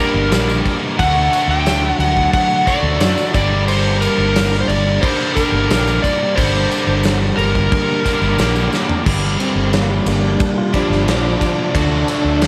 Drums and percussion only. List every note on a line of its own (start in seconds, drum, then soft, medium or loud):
0.32 snare loud
0.32 tambourine loud
0.32 crash medium
0.49 tambourine medium
0.66 kick medium
0.66 crash medium
0.99 kick loud
0.99 tambourine soft
0.99 crash medium
1.33 tambourine medium
1.33 crash medium
1.51 tambourine soft
1.66 snare loud
1.66 tambourine loud
1.66 crash medium
2.00 crash medium
2.17 kick medium
2.17 tambourine soft
2.33 kick loud
2.33 tambourine soft
2.33 crash medium
2.50 tambourine soft
2.67 kick medium
2.67 tambourine medium
2.67 crash medium
3.00 snare loud
3.00 tambourine loud
3.00 crash medium
3.17 tambourine medium
3.34 kick loud
3.34 tambourine medium
3.34 crash medium
3.68 tambourine soft
3.68 crash medium
4.02 tambourine medium
4.02 crash medium
4.20 tambourine soft
4.36 snare loud
4.36 tambourine medium
4.36 crash medium
4.53 snare soft
4.69 crash medium
4.87 tambourine soft
5.03 kick loud
5.03 tambourine soft
5.03 crash loud
5.20 tambourine soft
5.37 kick medium
5.37 tambourine medium
5.37 crash medium
5.70 snare loud
5.70 tambourine loud
5.70 crash medium
5.87 tambourine medium
6.04 kick medium
6.04 tambourine medium
6.04 crash medium
6.37 kick loud
6.37 tambourine soft
6.37 crash medium
6.55 tambourine soft
6.71 tambourine medium
6.71 crash medium
6.88 tambourine soft
7.03 snare loud
7.03 tambourine medium
7.03 crash medium
7.21 tambourine soft
7.39 crash medium
7.55 kick medium
7.55 tambourine soft
7.72 kick loud
7.72 tambourine soft
7.72 crash medium
7.89 tambourine soft
8.05 kick medium
8.05 tambourine medium
8.05 crash medium
8.22 tambourine soft
8.38 snare loud
8.38 tambourine loud
8.38 crash medium
8.56 tambourine medium
8.73 snare medium
8.73 tambourine medium
8.89 floor tom medium
8.89 tambourine soft
9.06 kick loud
9.06 crash loud
9.24 snare soft
9.40 ride medium
9.73 snare loud
9.73 ride loud
10.06 ride loud
10.40 kick loud
10.40 ride loud
10.74 kick medium
10.74 ride medium
10.92 snare soft
11.08 snare loud
11.08 ride loud
11.41 kick medium
11.41 ride medium
11.75 kick loud
11.75 ride loud
12.08 ride medium
12.42 snare loud
12.42 ride loud